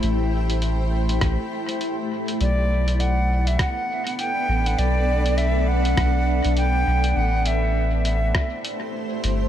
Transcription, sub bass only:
X:1
M:4/4
L:1/16
Q:"Swing 16ths" 1/4=101
K:Ador
V:1 name="Sub bass" clef=bass
A,,,8 A,,, z6 z | B,,,8 z6 A,,,2 | B,,,8 B,,,3 B,,,3 B,,,2 | A,,,8 z6 G,,,2 |]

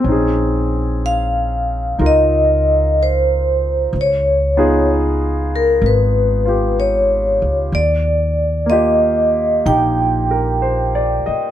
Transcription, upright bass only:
X:1
M:4/4
L:1/8
Q:"Swing" 1/4=62
K:Bbm
V:1 name="Upright bass" clef=bass
B,,,4 D,,4 | D,,4 A,,,3 D,, | E,,4 B,,,3 z |]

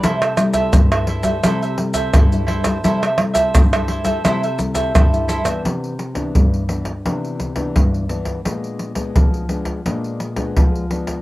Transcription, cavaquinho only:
X:1
M:4/4
L:1/16
Q:1/4=86
K:C
V:1 name="Cavaquinho"
[EAce] [Ace] z [Ace]2 [Ace] [EAce] [Ace] [EAce] [Ace] z [Ace] [EAce]2 [EAce] [Ace] | [EAce] [Ace] z [Ace]2 [Ace] [EAce] [Ace] [EAce] [Ace] z [Ace] [EAce]2 [EAce] [Ace] | z16 | z16 |]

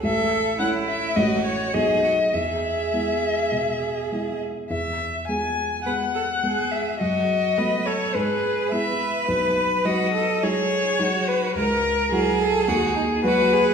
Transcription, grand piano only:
X:1
M:4/4
L:1/8
Q:1/4=105
K:E
V:1 name="Grand piano"
A,,,2 [A,CE]2 [A,,,A,CF]2 [B,,,A,B,F]2 | E,,2 [G,B,E]2 B,,2 [G,B,E]2 | E,,2 [G,B,G]2 [G,B,G]2 [G,B,G]2 | F,,2 [A,B,F]2 G,,2 [G,B,E]2 |
B,,,2 [F,DF]2 [F,DF]2 [F,DF]2 | C,,2 [F,EF]2 D,,2 [F,FB]2 |]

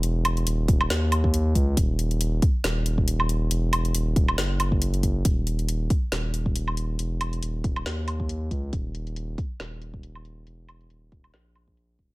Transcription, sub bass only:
X:1
M:4/4
L:1/8
Q:"Swing 16ths" 1/4=138
K:Ebphr
V:1 name="Sub bass" clef=bass
F,,,2 E,,,2 E,,3 D,, | E,,,3 z E,,,4 | F,,,2 E,,,2 G,,,4 | E,,,3 z E,,,4 |
F,,,2 E,,,2 E,,3 D,, | E,,,3 z E,,,4 | F,,,2 E,,,2 B,,,3 E,,, |]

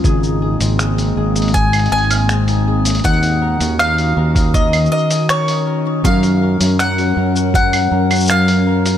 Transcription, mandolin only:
X:1
M:4/4
L:1/8
Q:1/4=80
K:Abmix
V:1 name="Mandolin"
z4 a a3 | g2 f2 e e d2 | f2 g2 g2 f2 |]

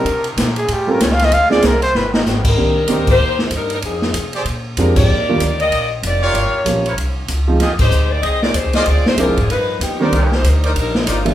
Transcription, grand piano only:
X:1
M:4/4
L:1/8
Q:"Swing" 1/4=191
K:Cm
V:1 name="Grand piano"
z4 z [G,^B,^C^E=A] z2 | z [A,CDFA] z6 | [E,B,CDG] z [E,B,CDG] z4 z | z6 [F,A,CDG]2 |
z [E,G,B,DF] z6 | z2 [F,G,B,_DF] z4 [F,A,CEF] | z8 | z2 [F,A,CD=E] z4 [^D,G,^A,C=D] |
z6 z [=E,G,B,D=E] |]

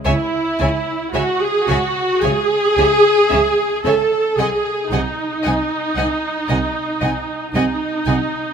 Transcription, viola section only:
X:1
M:4/4
L:1/16
Q:1/4=56
K:C#m
V:1 name="Viola section"
E4 F G F2 G6 A2 | G2 D8- D2 D4 |]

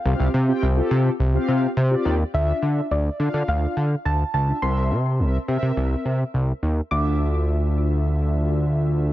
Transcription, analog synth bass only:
X:1
M:4/4
L:1/16
Q:1/4=105
K:Dm
V:1 name="Analog synth bass" clef=bass
C,, C,, C,2 C,,2 C,2 C,,2 C,2 C,2 _E,,2 | D,,2 D,2 D,,2 D, D, D,,2 D,2 D,,2 ^C,,2 | C,,2 C,2 C,,2 C, C, C,,2 C,2 C,,2 _E,,2 | D,,16 |]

